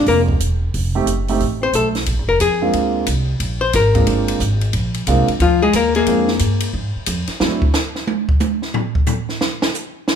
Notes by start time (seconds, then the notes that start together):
Already playing: G#3 C4 D4 F4
0.06 F1 A#3 A#4, kick, open hi-hat
0.28 kick
0.40 E1, closed hi-hat
0.74 F1, kick, open hi-hat
0.95 A3 C4 D#4 G4
1.06 F#1, closed hi-hat
1.28 A3 C4 D#4 G4, open hi-hat
1.40 A1, kick, open hi-hat
1.61 C4 C5
1.73 B1 A3 A4, closed hi-hat
1.95 snare, open hi-hat
2.06 A#1, kick, ride
2.18 G#1
2.28 F1 A#4
2.40 F2 G#4, kick, hi-hat pedal, ride
2.62 G#3 A#3 C4 D4 F4
2.73 D2, kick, ride
3.06 C2, kick, hi-hat pedal, ride
3.40 A#1, kick, ride
3.61 C5
3.73 G#1 A#4, kick, snare, hi-hat pedal, ride
3.95 G#3 A#3 C4 D4 F4, kick, ride
4.07 G1, ride
4.28 ride
4.40 G#1, kick, hi-hat pedal
4.61 ride
4.73 A#1, kick, ride
4.94 ride
5.07 C2 G#3 A#3 C4 D4 F4, kick, hi-hat pedal, ride
5.28 muted upright bass stroke, ride
5.40 D2 F3 F4, kick, ride
5.62 G#3 G#4
5.73 D#2 A#3 A#4, kick, hi-hat pedal, ride
5.95 A#3 G#4, ride
6.07 F2 G#3 A#3 C4 D4 F4, kick, ride
6.28 snare
6.39 G2, kick, hi-hat pedal, ride
6.60 ride
6.74 G#2, kick
6.96 muted upright bass stroke
7.06 F2, kick, hi-hat pedal, ride
7.27 muted upright bass stroke, snare, ride
7.40 D#2 F#3 A3 C4 D4 E4, snare
7.62 kick
7.73 snare, hi-hat pedal
7.96 snare
8.07 high tom
8.29 kick
8.40 hi-hat pedal, high tom
8.62 snare
8.74 floor tom
8.95 kick
9.06 floor tom, hi-hat pedal
9.29 snare
9.41 snare
9.62 snare
9.74 hi-hat pedal
10.08 snare